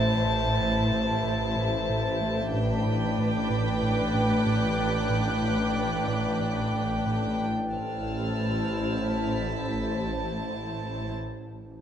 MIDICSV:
0, 0, Header, 1, 9, 480
1, 0, Start_track
1, 0, Key_signature, 0, "minor"
1, 0, Tempo, 644468
1, 1884, Time_signature, 4, 2, 24, 8
1, 4274, Tempo, 657174
1, 8711, End_track
2, 0, Start_track
2, 0, Title_t, "Violin section"
2, 0, Program_c, 0, 48
2, 1888, Note_on_c, 0, 83, 36
2, 2377, Note_on_c, 0, 86, 35
2, 2840, Note_on_c, 0, 90, 36
2, 5453, Note_off_c, 0, 90, 0
2, 5455, Note_off_c, 0, 83, 0
2, 5461, Note_off_c, 0, 86, 0
2, 5737, Note_on_c, 0, 88, 25
2, 5738, Note_on_c, 0, 89, 22
2, 6691, Note_on_c, 0, 95, 21
2, 6901, Note_off_c, 0, 89, 0
2, 7374, Note_off_c, 0, 95, 0
2, 7377, Note_off_c, 0, 88, 0
2, 8711, End_track
3, 0, Start_track
3, 0, Title_t, "Violin section"
3, 0, Program_c, 1, 48
3, 0, Note_on_c, 1, 81, 36
3, 1860, Note_off_c, 1, 81, 0
3, 1893, Note_on_c, 1, 79, 38
3, 5554, Note_off_c, 1, 79, 0
3, 5733, Note_on_c, 1, 81, 25
3, 8198, Note_off_c, 1, 81, 0
3, 8711, End_track
4, 0, Start_track
4, 0, Title_t, "Ambient pad"
4, 0, Program_c, 2, 92
4, 0, Note_on_c, 2, 72, 50
4, 0, Note_on_c, 2, 76, 49
4, 0, Note_on_c, 2, 81, 48
4, 1855, Note_off_c, 2, 72, 0
4, 1856, Note_off_c, 2, 76, 0
4, 1856, Note_off_c, 2, 81, 0
4, 1893, Note_on_c, 2, 74, 49
4, 1893, Note_on_c, 2, 79, 46
4, 1897, Note_on_c, 2, 71, 48
4, 5720, Note_on_c, 2, 81, 41
4, 5724, Note_on_c, 2, 64, 43
4, 5725, Note_on_c, 2, 72, 42
4, 5734, Note_off_c, 2, 74, 0
4, 5734, Note_off_c, 2, 79, 0
4, 5736, Note_off_c, 2, 71, 0
4, 8192, Note_off_c, 2, 81, 0
4, 8193, Note_off_c, 2, 64, 0
4, 8194, Note_off_c, 2, 72, 0
4, 8711, End_track
5, 0, Start_track
5, 0, Title_t, "Violin section"
5, 0, Program_c, 3, 48
5, 0, Note_on_c, 3, 64, 37
5, 0, Note_on_c, 3, 72, 39
5, 1851, Note_off_c, 3, 64, 0
5, 1851, Note_off_c, 3, 72, 0
5, 1884, Note_on_c, 3, 71, 42
5, 1886, Note_on_c, 3, 62, 43
5, 5551, Note_off_c, 3, 62, 0
5, 5579, Note_off_c, 3, 71, 0
5, 5731, Note_on_c, 3, 72, 26
5, 5737, Note_on_c, 3, 64, 27
5, 8197, Note_off_c, 3, 72, 0
5, 8200, Note_off_c, 3, 64, 0
5, 8711, End_track
6, 0, Start_track
6, 0, Title_t, "Analog synth bass"
6, 0, Program_c, 4, 38
6, 0, Note_on_c, 4, 45, 62
6, 105, Note_off_c, 4, 45, 0
6, 202, Note_on_c, 4, 45, 43
6, 346, Note_off_c, 4, 45, 0
6, 447, Note_on_c, 4, 45, 47
6, 589, Note_off_c, 4, 45, 0
6, 684, Note_on_c, 4, 45, 58
6, 826, Note_off_c, 4, 45, 0
6, 923, Note_on_c, 4, 45, 47
6, 1066, Note_off_c, 4, 45, 0
6, 1162, Note_on_c, 4, 45, 51
6, 1306, Note_off_c, 4, 45, 0
6, 1409, Note_on_c, 4, 45, 67
6, 1551, Note_off_c, 4, 45, 0
6, 1649, Note_on_c, 4, 57, 48
6, 1791, Note_off_c, 4, 57, 0
6, 1887, Note_on_c, 4, 45, 64
6, 2029, Note_off_c, 4, 45, 0
6, 2129, Note_on_c, 4, 45, 44
6, 2270, Note_off_c, 4, 45, 0
6, 2368, Note_on_c, 4, 45, 48
6, 2509, Note_off_c, 4, 45, 0
6, 2605, Note_on_c, 4, 45, 61
6, 2747, Note_off_c, 4, 45, 0
6, 2847, Note_on_c, 4, 45, 49
6, 2988, Note_off_c, 4, 45, 0
6, 3083, Note_on_c, 4, 45, 46
6, 3225, Note_off_c, 4, 45, 0
6, 3322, Note_on_c, 4, 45, 68
6, 3464, Note_off_c, 4, 45, 0
6, 3563, Note_on_c, 4, 57, 52
6, 3704, Note_off_c, 4, 57, 0
6, 3796, Note_on_c, 4, 45, 62
6, 3939, Note_off_c, 4, 45, 0
6, 4035, Note_on_c, 4, 45, 46
6, 4180, Note_off_c, 4, 45, 0
6, 4280, Note_on_c, 4, 45, 45
6, 4421, Note_off_c, 4, 45, 0
6, 4519, Note_on_c, 4, 45, 60
6, 4660, Note_off_c, 4, 45, 0
6, 4758, Note_on_c, 4, 45, 39
6, 4901, Note_off_c, 4, 45, 0
6, 5001, Note_on_c, 4, 45, 43
6, 5144, Note_off_c, 4, 45, 0
6, 5240, Note_on_c, 4, 45, 61
6, 5387, Note_off_c, 4, 45, 0
6, 5488, Note_on_c, 4, 57, 38
6, 5634, Note_off_c, 4, 57, 0
6, 8711, End_track
7, 0, Start_track
7, 0, Title_t, "Cello section"
7, 0, Program_c, 5, 48
7, 0, Note_on_c, 5, 45, 38
7, 1856, Note_off_c, 5, 45, 0
7, 1894, Note_on_c, 5, 45, 48
7, 5555, Note_off_c, 5, 45, 0
7, 5724, Note_on_c, 5, 45, 32
7, 8193, Note_off_c, 5, 45, 0
7, 8711, End_track
8, 0, Start_track
8, 0, Title_t, "Double bass section"
8, 0, Program_c, 6, 48
8, 0, Note_on_c, 6, 33, 42
8, 1855, Note_off_c, 6, 33, 0
8, 1891, Note_on_c, 6, 33, 43
8, 5553, Note_off_c, 6, 33, 0
8, 5727, Note_on_c, 6, 33, 31
8, 8195, Note_off_c, 6, 33, 0
8, 8711, End_track
9, 0, Start_track
9, 0, Title_t, "Synth drone"
9, 0, Program_c, 7, 95
9, 0, Note_on_c, 7, 33, 57
9, 1856, Note_off_c, 7, 33, 0
9, 1896, Note_on_c, 7, 33, 60
9, 5706, Note_off_c, 7, 33, 0
9, 5734, Note_on_c, 7, 33, 51
9, 8198, Note_off_c, 7, 33, 0
9, 8711, End_track
0, 0, End_of_file